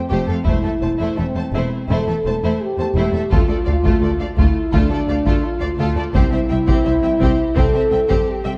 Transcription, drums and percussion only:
0.47 taiko
3.32 taiko
3.86 taiko
4.39 taiko
4.74 taiko
5.27 taiko
6.15 taiko
6.68 taiko
7.22 taiko
7.58 taiko
8.11 taiko

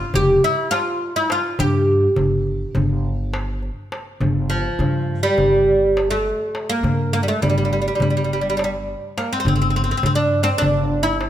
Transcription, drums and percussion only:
0.14 darbuka dum
0.72 darbuka tek
1.30 darbuka tek
1.59 darbuka dum
2.16 darbuka dum
2.47 darbuka ka
2.75 darbuka dum
3.34 darbuka tek
3.62 darbuka ka
3.92 darbuka tek
4.21 darbuka dum
4.50 darbuka ka
4.80 darbuka dum
5.38 darbuka dum
5.97 darbuka tek
6.26 darbuka ka
6.55 darbuka tek
6.84 darbuka dum
7.13 darbuka ka
7.43 darbuka dum
8.00 darbuka dum
8.59 darbuka tek
8.88 darbuka ka
9.18 darbuka tek
9.46 darbuka dum
9.75 darbuka ka
10.03 darbuka dum
10.62 darbuka dum
11.21 darbuka tek

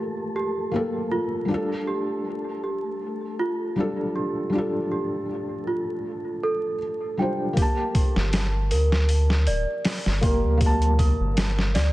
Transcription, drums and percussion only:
7.57 kick, open hi-hat
7.95 kick, open hi-hat
8.16 snare
8.33 snare, open hi-hat
8.71 open hi-hat
8.92 snare
9.09 open hi-hat
9.30 snare
9.47 open hi-hat
9.85 snare, open hi-hat
10.06 snare
10.23 kick, open hi-hat
10.61 kick, open hi-hat
10.82 closed hi-hat
10.99 kick, open hi-hat
11.37 snare, open hi-hat
11.59 snare
11.75 snare, open hi-hat

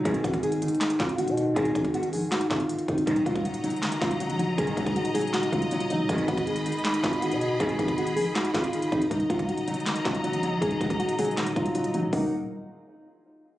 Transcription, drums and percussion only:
0.05 kick, closed hi-hat
0.14 closed hi-hat
0.24 kick, closed hi-hat
0.34 kick, closed hi-hat
0.43 closed hi-hat
0.52 closed hi-hat
0.62 closed hi-hat
0.68 closed hi-hat
0.75 closed hi-hat
0.81 snare, clap, closed hi-hat
0.90 closed hi-hat
1.00 kick, snare, clap, closed hi-hat
1.09 closed hi-hat
1.18 closed hi-hat
1.28 closed hi-hat
1.37 closed hi-hat
1.56 kick, closed hi-hat
1.65 closed hi-hat
1.75 kick, closed hi-hat
1.85 kick, closed hi-hat
1.94 closed hi-hat
2.03 closed hi-hat
2.13 open hi-hat
2.32 snare, clap, closed hi-hat
2.41 closed hi-hat
2.51 kick, snare, clap, closed hi-hat
2.60 closed hi-hat
2.69 closed hi-hat
2.79 closed hi-hat
2.88 kick, closed hi-hat
2.98 closed hi-hat
3.07 kick, closed hi-hat
3.16 closed hi-hat
3.26 kick, closed hi-hat
3.35 kick, closed hi-hat
3.45 closed hi-hat
3.54 closed hi-hat
3.64 closed hi-hat
3.70 closed hi-hat
3.76 closed hi-hat
3.83 snare, clap, closed hi-hat
3.92 closed hi-hat
4.02 kick, snare, clap, closed hi-hat
4.11 closed hi-hat
4.20 closed hi-hat
4.30 closed hi-hat
4.39 closed hi-hat
4.58 kick, closed hi-hat
4.67 closed hi-hat
4.77 kick, closed hi-hat
4.86 kick, closed hi-hat
4.96 closed hi-hat
5.05 closed hi-hat
5.15 closed hi-hat, open hi-hat
5.21 closed hi-hat
5.27 closed hi-hat
5.34 snare, clap, closed hi-hat
5.43 closed hi-hat
5.53 kick, closed hi-hat
5.62 closed hi-hat
5.71 closed hi-hat
5.80 closed hi-hat
5.90 closed hi-hat
6.09 kick, closed hi-hat
6.18 closed hi-hat
6.28 kick, closed hi-hat
6.37 kick, closed hi-hat
6.47 closed hi-hat
6.56 closed hi-hat
6.66 closed hi-hat
6.72 closed hi-hat
6.78 closed hi-hat
6.85 snare, clap, closed hi-hat
6.94 closed hi-hat
7.03 kick, snare, clap, closed hi-hat
7.13 closed hi-hat
7.22 closed hi-hat
7.31 closed hi-hat
7.41 closed hi-hat
7.60 kick, closed hi-hat
7.69 closed hi-hat
7.79 kick, closed hi-hat
7.88 kick, closed hi-hat
7.98 closed hi-hat
8.07 closed hi-hat
8.17 open hi-hat
8.35 snare, clap, closed hi-hat
8.45 closed hi-hat
8.54 kick, snare, clap, closed hi-hat
8.64 closed hi-hat
8.73 closed hi-hat
8.82 closed hi-hat
8.92 kick, closed hi-hat
9.02 closed hi-hat
9.11 kick, closed hi-hat
9.20 closed hi-hat
9.30 kick, closed hi-hat
9.39 kick, closed hi-hat
9.49 closed hi-hat
9.57 closed hi-hat
9.68 closed hi-hat
9.74 closed hi-hat
9.80 closed hi-hat
9.86 snare, clap, closed hi-hat
9.96 closed hi-hat
10.05 kick, snare, clap, closed hi-hat
10.15 closed hi-hat
10.24 closed hi-hat
10.33 closed hi-hat
10.43 closed hi-hat
10.62 kick, closed hi-hat
10.71 closed hi-hat
10.81 kick, closed hi-hat
10.90 kick, closed hi-hat
11.00 closed hi-hat
11.09 closed hi-hat
11.19 closed hi-hat, open hi-hat
11.25 closed hi-hat
11.31 closed hi-hat
11.37 snare, clap, closed hi-hat
11.46 closed hi-hat
11.56 kick, closed hi-hat
11.66 closed hi-hat
11.75 closed hi-hat
11.84 closed hi-hat
11.94 closed hi-hat
12.13 kick, open hi-hat

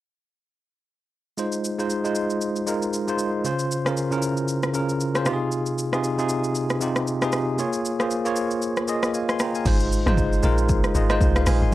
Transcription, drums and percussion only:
1.38 shaker
1.52 shaker
1.65 shaker
1.80 shaker
1.90 shaker
2.05 shaker
2.15 shaker
2.30 shaker
2.41 shaker
2.56 shaker
2.67 shaker
2.82 shaker
2.93 shaker
3.08 shaker
3.19 shaker
3.45 shaker
3.59 shaker
3.72 shaker
3.86 cross-stick, shaker
3.97 shaker
4.12 shaker
4.22 shaker
4.37 shaker
4.48 shaker
4.63 cross-stick, shaker
4.74 shaker
4.89 shaker
5.01 shaker
5.15 cross-stick, shaker
5.26 cross-stick, shaker
5.52 shaker
5.66 shaker
5.79 shaker
5.93 cross-stick, shaker
6.04 shaker
6.19 shaker
6.29 shaker
6.44 shaker
6.55 shaker
6.70 cross-stick, shaker
6.81 shaker
6.96 cross-stick, shaker
7.07 shaker
7.22 cross-stick, shaker
7.33 cross-stick, shaker
7.59 shaker
7.73 shaker
7.85 shaker
8.00 cross-stick, shaker
8.11 shaker
8.26 shaker
8.36 shaker
8.51 shaker
8.62 shaker
8.77 cross-stick, shaker
8.88 shaker
9.03 cross-stick, shaker
9.14 shaker
9.29 cross-stick, shaker
9.39 cross-stick, shaker
9.55 shaker
9.66 kick, crash, shaker
9.80 shaker
9.92 shaker
10.06 cross-stick, mid tom, shaker
10.17 kick, shaker
10.33 shaker
10.43 shaker
10.58 shaker
10.69 kick, shaker
10.84 cross-stick, shaker
10.95 shaker
11.10 cross-stick, shaker
11.21 kick, shaker
11.36 cross-stick, shaker
11.46 cross-stick, open hi-hat, shaker

